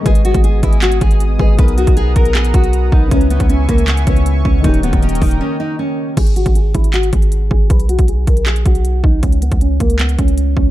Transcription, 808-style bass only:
X:1
M:4/4
L:1/16
Q:1/4=157
K:B
V:1 name="808-style bass" clef=bass
G,,,3 G,,,3 G,,,4 G,,,4 G,,,2 | B,,,3 B,,,3 B,,,2 A,,,2 B,,,4 B,,,2 | C,,3 C,,3 C,,4 C,,4 C,,2 | D,,,3 D,,,3 D,,,2 z8 |
G,,,3 G,,,3 G,,,4 G,,,4 G,,,2 | B,,,3 B,,,3 B,,,2 A,,,2 B,,,4 B,,,2 | C,,3 C,,3 C,,4 C,,4 C,,2 |]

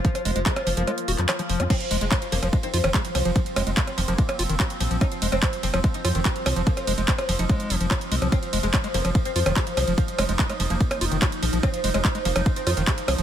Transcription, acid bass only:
X:1
M:4/4
L:1/16
Q:1/4=145
K:Fm
V:1 name="Acid bass" clef=bass
F, z A, A, F, z F, F, A, z _G F, F, F, F, F | F, z A, A, A, z F, F, A, z F E, _G z F, F, | F, z A, A, A, z F, F, A, z F E, _G z F, F, | F, z A, A, A, z F, F, A, z F E, _G z F, F, |
F, z A, A, A, z F, F, A,2 F, F, F z A, F, | F, z A, A, A, A, F, F, z2 F E, _G z F, F, | F, z A, A, A, A, F, F, z2 F E, _G z F, F, | F, z A, A, A, A, F, F, z2 F E, _G z F, F, |]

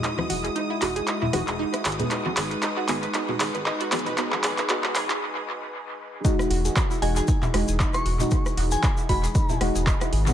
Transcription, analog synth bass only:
X:1
M:4/4
L:1/16
Q:"Swing 16ths" 1/4=116
K:E
V:1 name="Analog synth bass" clef=bass
z2 E,,, z3 E,,, z3 E,,, E,,, z2 G,,, z | z2 G,,, z3 G,,, z3 G,,, G,,, z2 G,,, z | z2 G,,, z3 G,,, z8 z | z2 E,,, z3 E,,, z3 E,,, E,,, z2 E,,, z |
z2 E,,, z3 E,,, z3 E,,, E,,, z2 G,,, z |]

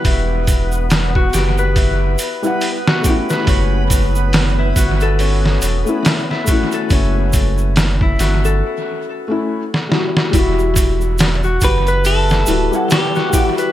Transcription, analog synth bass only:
X:1
M:4/4
L:1/8
Q:"Swing 16ths" 1/4=70
K:Edor
V:1 name="Analog synth bass" clef=bass
E,,,3 F,,,2 z3 | F,,,3 G,,,2 E,,, z2 | F,,,3 G,,, z4 | E,,,3 F,,,2 D,,, z2 |]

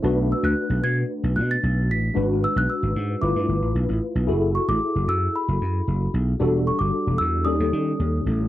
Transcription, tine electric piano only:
X:1
M:4/4
L:1/8
Q:1/4=113
K:Bdor
V:1 name="Tine electric piano"
[A,DFB]8 | [G,DFB]4 [A,E=FB]4 | [EFGA]8 | [=G,DFA]4 [G,C^DA]4 |]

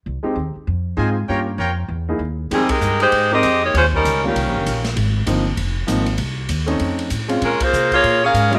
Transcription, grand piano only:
X:1
M:4/4
L:1/8
Q:"Swing" 1/4=196
K:Fm
V:1 name="Grand piano"
z [A,CEG] z4 [A,CEF] z | [B,DFG] z4 [^A,^D=E^G] z2 | [A,CEG] z4 [A,CEB] z2 | z3 [G,B,DF] z4 |
z2 [F,B,CE] z3 [F,B,CE] z | z3 [=A,CDE]3 z [_A,CDF] | z6 z [G,B,DF] |]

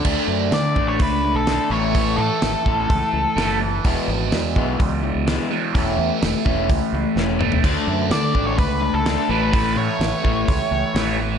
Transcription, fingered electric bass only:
X:1
M:4/4
L:1/16
Q:1/4=127
K:A
V:1 name="Fingered electric bass" clef=bass
D,, z F,,2 D,2 A,,,2 C,,3 B,,,2 z A,,,2- | A,,,2 A,, z A,,, z A,,,2 C,, z C,, z F,,,4 | E,,, z G,,,2 E,,2 B,,,2 C,,3 C,,2 z3 | E,,,2 E,, z E,,, z E,,,2 C,, z C,, z E,,,4 |
D,, z F,,2 D,2 A,,,2 C,,3 C,,2 z A,,,2- | A,,,2 A,, z A,,, z A,,,2 C,, z C,, z A,,,4 |]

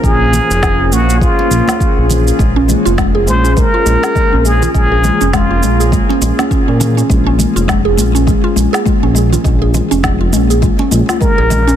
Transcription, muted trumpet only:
X:1
M:4/4
L:1/8
Q:"Swing 16ths" 1/4=102
K:Bbm
V:1 name="Muted trumpet"
A3 G F3 z | z3 c B3 A | A2 F2 z4 | z8 |
z6 B2 |]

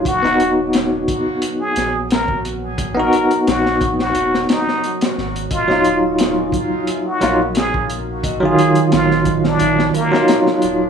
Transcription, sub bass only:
X:1
M:4/4
L:1/8
Q:1/4=88
K:Ebm
V:1 name="Sub bass" clef=bass
^D,,,3 z2 B,,,3- | B,,, z B,,,2 ^D,,, z2 A,,, | E,,,3 z2 B,,,3- | B,,, z B,,,2 B,,, z2 E,,, |]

